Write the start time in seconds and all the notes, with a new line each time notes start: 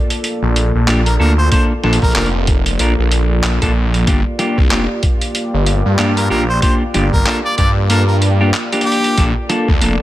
Already playing: A#3 F4 A4 D5
0.10 closed hi-hat
0.24 closed hi-hat
0.42 A#1
0.56 closed hi-hat
0.75 A#1
0.87 A#1 A#3 D4 F4 G4, clap, closed hi-hat
1.06 A#4, closed hi-hat
1.20 D2 A#3 D4 F4 A4 A#4
1.38 C5
1.51 A#3 D4 F4 A4 C5, kick, closed hi-hat
1.84 A#1 A#3 D4 F4 A4, snare
1.93 closed hi-hat
2.02 A#1 A#4, kick, closed hi-hat
2.05 closed hi-hat
2.11 closed hi-hat
2.15 F1 A#3 D4 F4 A#4, clap, closed hi-hat
2.22 closed hi-hat
2.26 closed hi-hat
2.47 kick, closed hi-hat
2.66 closed hi-hat
2.79 A#1 A#3 D4 F4 A#4, closed hi-hat
2.99 A#1
3.12 closed hi-hat
3.43 A#1, clap, closed hi-hat
3.62 A#1 A#3 D4 F4 A4, kick, closed hi-hat
3.94 closed hi-hat
4.07 G1 A#3 D4 F4 G4 D5, kick, closed hi-hat
4.39 A#3 D4 F4 G4, snare, closed hi-hat
4.58 C2, kick
4.71 F1 A#3 D4 F4 G4, clap, closed hi-hat
5.03 kick, closed hi-hat
5.21 closed hi-hat
5.35 closed hi-hat
5.54 G1
5.66 closed hi-hat
5.86 G2
5.99 G2 A#3 D4 F4 G4, clap, closed hi-hat
6.17 A#4, closed hi-hat
6.30 A#1 A#3 D4 F4 G4 A#4
6.49 C5
6.62 A#3 D4 F4 G4 C5, kick, closed hi-hat
6.94 G1 A#3 D4 F4 G4, snare, closed hi-hat
7.13 G1 A#4, kick
7.26 A#3 D4 F4 A4 A#4, clap, closed hi-hat
7.45 D5
7.57 G2 D5, kick, closed hi-hat
7.90 A#3 D4 F4 A4 A#4, closed hi-hat
8.08 A#4
8.22 closed hi-hat
8.41 A#3 D4 F4 G4
8.54 clap, closed hi-hat
8.72 A#3 D4 F4 G4, closed hi-hat
8.81 closed hi-hat
8.86 G4
8.92 closed hi-hat
9.04 closed hi-hat
9.17 A#1 A#3 D4 F4 A4 D5, kick, closed hi-hat
9.49 A#3 D4 F4 A4, snare, closed hi-hat
9.68 D2, kick
9.81 F1 A#3 D4 F4 A4, closed hi-hat